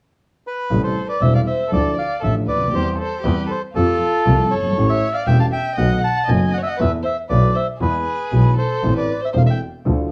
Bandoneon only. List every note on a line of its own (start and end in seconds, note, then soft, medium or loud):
0.47 0.82 B4 medium
0.84 1.08 C5 medium
1.09 1.22 D5 medium
1.22 1.34 E5 medium
1.35 1.41 F5 medium
1.47 1.71 E5 medium
1.73 1.96 D5 medium
1.98 2.22 F5 medium
2.23 2.35 E5 medium
2.48 2.75 D5 medium
2.75 2.98 C5 medium
3.00 3.26 C5 medium
3.26 3.51 B4 medium
3.51 3.62 C5 medium
3.76 4.54 A4 medium
4.51 4.91 C#5 medium
4.90 5.16 E5 medium
5.14 5.27 F5 medium
5.27 5.39 G5 medium
5.40 5.46 A5 medium
5.52 5.76 G5 medium
5.78 6.02 F#5 medium
6.04 6.30 A5 medium
6.29 6.53 G#5 medium
6.54 6.60 F#5 medium
6.63 6.68 E5 medium
6.63 6.79 F#5 medium
6.81 6.92 E5 medium
7.05 7.17 E5 medium
7.29 7.56 D5 medium
7.56 7.67 E5 medium
7.82 8.54 B4 medium
8.58 8.94 C5 medium
8.97 9.21 D5 medium
9.25 9.30 E5 medium
9.37 9.42 F5 medium
9.50 9.61 G5 medium